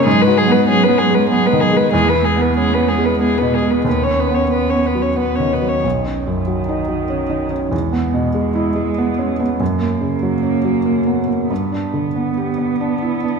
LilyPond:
<<
  \new Staff \with { instrumentName = "Violin" } { \time 3/4 \key b \major \tempo 4 = 95 gis'16 b'16 gis'16 b'16 gis'16 b'16 gis'16 b'16 gis'16 b'16 gis'16 b'16 | gis'16 b'16 gis'16 b'16 gis'16 b'16 gis'16 b'16 gis'16 b'16 gis'16 b'16 | b'16 cis''16 b'16 cis''16 b'16 cis''16 b'16 cis''16 b'16 cis''16 b'16 cis''16 | r2. |
r2. | r2. | r2. | }
  \new Staff \with { instrumentName = "Felt piano" } { \time 3/4 \key b \major \tuplet 3/2 { gis,8 fis'8 b8 cis'8 b8 gis8 b8 dis8 gis8 } | \tuplet 3/2 { e,8 e'8 b8 cis'8 b8 gis8 b8 b,8 gis8 } | \tuplet 3/2 { dis,8 cis'8 b8 cis'8 b8 fis8 b8 dis8 fis8 } | \tuplet 3/2 { b,,8 cis'8 fis,8 fis8 dis'8 fis8 cis'8 dis'8 cis'8 } |
\tuplet 3/2 { e,8 b8 b,8 gis8 e'8 gis8 b8 cis'8 b8 } | \tuplet 3/2 { fis,8 ais8 cis8 fis8 cis'8 fis8 ais8 b8 ais8 } | \tuplet 3/2 { g,8 d'8 d8 b8 g'8 b8 d'8 e'8 d'8 } | }
  \new Staff \with { instrumentName = "Cello" } { \time 3/4 \key b \major fis16 gis16 fis16 gis16 fis16 gis16 fis16 gis16 fis16 gis16 fis16 gis16 | gis16 b16 gis16 b16 gis16 b16 gis16 b16 gis16 b16 gis16 b16 | b16 cis'16 b16 cis'16 b16 cis'16 b16 cis'16 b16 cis'16 b16 cis'16 | dis2. |
gis2. | ais2. | b2. | }
>>